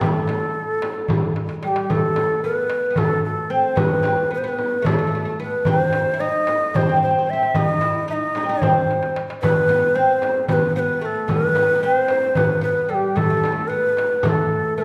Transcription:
0.01 A3 B4, frame drum, darbuka dum
0.06 A4
0.28 darbuka tek, frame drum
0.82 darbuka tek, frame drum
1.08 darbuka dum, frame drum
1.36 darbuka tek
1.49 darbuka ka
1.63 G3 A4, darbuka tek
1.68 G4
1.76 darbuka ka
1.90 A3 A4, frame drum, darbuka dum
2.16 darbuka tek, frame drum
2.44 B3 A#4
2.55 B4
2.70 darbuka tek
2.90 B3
2.96 A3 A4, darbuka dum, frame drum
3.25 A4
3.50 C4 C5
3.76 B3 B4, darbuka dum, frame drum
4.03 C4, darbuka tek, frame drum
4.31 B3 B4
4.38 C5
4.44 B3
4.48 B4
4.58 frame drum
4.82 A3 A4, darbuka dum
4.86 frame drum
4.92 A3
4.99 A3
5.07 A3
5.15 A3
5.25 A3
5.40 B3 B4
5.65 C4 B4, darbuka dum, frame drum
5.79 C5
5.93 darbuka tek, frame drum
6.14 E4
6.20 D#4 D#5
6.47 darbuka tek, frame drum
6.74 C4 C5, darbuka dum, frame drum
6.81 C4
6.89 C4
6.96 C4
7.02 C4 C5
7.10 C4
7.19 C4
7.27 C4 E5
7.33 C4
7.43 C4
7.55 D#4 D#5, darbuka dum, frame drum
7.81 E4, darbuka tek, frame drum
8.08 D#4 E5
8.13 D#5
8.35 D#4, darbuka tek, frame drum
8.43 C4
8.49 D#4
8.62 C4 C5, darbuka dum, frame drum
8.91 darbuka tek
9.03 darbuka ka
9.16 darbuka tek
9.30 darbuka ka
9.42 B3 B4, frame drum, darbuka dum
9.69 B3, darbuka tek, frame drum
9.95 C4 C5
10.22 darbuka tek, frame drum
10.48 B3 C5, darbuka dum, frame drum
10.53 B4
10.76 B3 B4 C5
11.01 A3 B4
11.05 A4
11.28 B3 B4, darbuka dum, frame drum
11.55 B3, darbuka tek, frame drum
11.75 D#4
11.83 C4 B4
11.96 C5
12.08 darbuka tek, frame drum
12.35 B3 B4, darbuka dum, frame drum
12.61 B3 B4
12.89 G3 A4
12.94 G4
13.16 A3 A4, frame drum, darbuka dum
13.22 A3
13.30 A3
13.37 A3
13.44 A3, darbuka tek, frame drum
13.52 A3
13.68 B3 B4
13.97 darbuka tek, frame drum
14.23 A3 B4, frame drum, darbuka dum
14.29 A4
14.77 A3 B4
14.81 A4

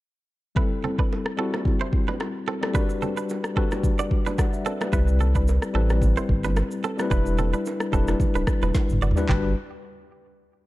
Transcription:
0.55 G3 C4 E4 A4 B4, kick, low conga
0.84 C4 A4, low conga
0.99 D4 B4, kick
1.13 high bongo
1.26 cross-stick
1.37 G3 C4 E4 F#4 A4
1.54 cross-stick, low bongo
1.65 kick, low conga
1.81 E4 C5, high bongo
1.93 kick
2.08 D4 B4, low bongo
2.20 cross-stick, high bongo
2.48 C4 A4, high bongo
2.61 G3 C4 E4 A4, cross-stick, low bongo
2.73 G3 D4 F#4 A#4 B4, kick, low conga, shaker
2.82 B4
2.90 shaker
3.02 C4 A4, low conga, shaker
3.17 D4 B4, shaker
3.29 high bongo, shaker
3.44 cross-stick, shaker
3.55 G3 C4 D4 F#4 A4 B4, kick
3.71 cross-stick, low bongo, shaker
3.83 kick, low conga, shaker
3.99 F#4 D5, high bongo, shaker
4.11 kick
4.26 D4 B4, low bongo, shaker
4.38 D5 F#5, kick, cross-stick, high bongo, shaker
4.53 E5, shaker
4.66 C4 A4 B4 D5, high bongo, shaker
4.81 G4 B4, cross-stick, low bongo, shaker
4.92 C2 G3 C4 E4 B4, kick, low conga, shaker
5.08 shaker
5.20 C4 A4, low conga, shaker
5.35 D4 B4, kick, shaker
5.48 high bongo, shaker
5.62 cross-stick, shaker
5.73 A1 G3 C4 E4 A4 B4
5.89 cross-stick, low bongo, shaker
6.02 kick, low conga, shaker
6.17 E4 C5, high bongo, shaker
6.29 G1, kick
6.44 D4 B4, low bongo, shaker
6.56 cross-stick, high bongo, shaker
6.71 shaker
6.84 C4 A4, high bongo, shaker
6.97 G3 C4 E4 B4, cross-stick, low bongo, shaker
7.10 E1 G3 D4 E4 B4, kick, low conga, shaker
7.26 shaker
7.38 C4 A4, low bongo, low conga, shaker
7.53 D4 B4, shaker
7.66 high bongo, shaker
7.80 cross-stick, shaker
7.92 E1 G3 C4 D4 E4 A4 B4, kick, shaker
8.08 cross-stick, low bongo, shaker
8.20 kick, low conga, shaker
8.35 D1 D4 B4, high bongo, shaker
8.47 kick, cross-stick, shaker
8.62 E1 D4 B4, low bongo, shaker
8.74 kick, snare, high bongo, shaker
8.89 G1, mid tom, shaker
9.02 F#1 F#4 D5, high bongo, shaker
9.11 floor tom
9.16 G3 D4 E4 B4, low bongo, shaker
9.29 G1 G3 D4 F#4 G4 B4, kick, clap, low conga

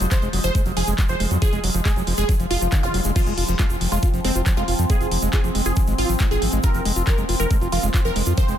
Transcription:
Already playing: F3 G#3
0.01 F1 F#3, closed hi-hat, shaker
0.11 F3 C5, kick, clap, closed hi-hat, shaker
0.22 F1 G#3, closed hi-hat, shaker
0.33 F1 F#3, open hi-hat
0.44 F1 F3 C5, closed hi-hat, shaker
0.55 G#3, kick, closed hi-hat, shaker
0.65 F1 F#3, closed hi-hat, shaker
0.77 F1 F3 G#4, open hi-hat
0.87 F1 G#3, closed hi-hat, shaker
0.98 F#3, kick, clap, closed hi-hat, shaker
1.08 F1 F3 C5, closed hi-hat, shaker
1.20 F1 G#3, open hi-hat
1.31 F2 F#3, closed hi-hat, shaker
1.42 F3 G#4, kick, closed hi-hat, shaker
1.53 F1 G#3, closed hi-hat, shaker
1.64 F1 F#3, open hi-hat
1.75 F1 F3, shaker
1.85 G#3 G#4, kick, clap, closed hi-hat, shaker
1.96 F1 F#3, closed hi-hat, shaker
2.07 F1 F3, open hi-hat
2.17 F1 G#3 G#4, closed hi-hat, shaker
2.29 F#3, kick, closed hi-hat, swell, shaker
2.39 F1 F3, closed hi-hat, shaker
2.51 F1 F4, open hi-hat
2.61 F1 F3, closed hi-hat, shaker
2.72 D#3, kick, clap, closed hi-hat, shaker
2.83 F1 F4, closed hi-hat, zap, shaker
2.94 F1 F#3, open hi-hat
3.04 F1 G#3, closed hi-hat, shaker
3.16 F3 C4 F4, kick, closed hi-hat, crash, shaker
3.26 F1 G#3, closed hi-hat, shaker
3.38 F1 F4, open hi-hat
3.48 F1 F3, closed hi-hat, shaker
3.59 G#3 F4, kick, clap, closed hi-hat, shaker
3.70 F1 F4, closed hi-hat, shaker
3.81 F1 F3, open hi-hat
3.92 F1 G#3 F4, closed hi-hat, shaker
4.02 F4, kick, closed hi-hat, shaker
4.14 F1 F3, closed hi-hat, shaker
4.25 F1 G#3 C4, open hi-hat
4.35 F1 F4, closed hi-hat, shaker
4.46 F3, kick, clap, closed hi-hat, shaker
4.57 F1 G#3 F4, closed hi-hat, shaker
4.68 F1 F4, open hi-hat
4.79 F2 F3, closed hi-hat, shaker
4.90 G#3 G#4, kick, closed hi-hat, shaker
5.01 F1 F4, closed hi-hat, shaker
5.11 F1 F3, open hi-hat
5.22 F1 G#3, closed hi-hat, shaker
5.33 F4 G#4, kick, clap, closed hi-hat, shaker
5.44 F1 F3, closed hi-hat, shaker
5.55 F1 G#3, open hi-hat
5.66 F1 F4 G#4, closed hi-hat, shaker
5.76 F3, kick, closed hi-hat, shaker
5.87 G#1 G#3, closed hi-hat, shaker
5.98 G#1 F4, open hi-hat
6.09 G#1 F3, closed hi-hat, shaker
6.19 G#3, kick, clap, closed hi-hat, shaker
6.31 G#1 F4 G#4, closed hi-hat, shaker
6.42 G#1 F3, open hi-hat
6.52 G#1 G#3, shaker
6.63 F4 A#4, kick, closed hi-hat, shaker
6.74 F1 F3, closed hi-hat, shaker
6.85 F1 G#3, open hi-hat
6.96 F1 F4, closed hi-hat, shaker
7.07 F3 A#4, kick, clap, closed hi-hat, shaker
7.18 F1 G#3, closed hi-hat, shaker
7.29 F1 F4, open hi-hat
7.40 F1 F3 A#4, closed hi-hat, shaker
7.51 G#3, kick, closed hi-hat, shaker
7.61 F1 F4, closed hi-hat, shaker
7.72 F1 F3 F4, open hi-hat
7.83 F1 G#3, closed hi-hat, shaker
7.94 F4, kick, clap, closed hi-hat, shaker
8.05 F1 F3 A#4, closed hi-hat, shaker
8.16 F1 G#3, open hi-hat
8.26 F2 F4, closed hi-hat, shaker
8.38 F3 C5, kick, closed hi-hat, shaker
8.48 F1 G#3, closed hi-hat, shaker

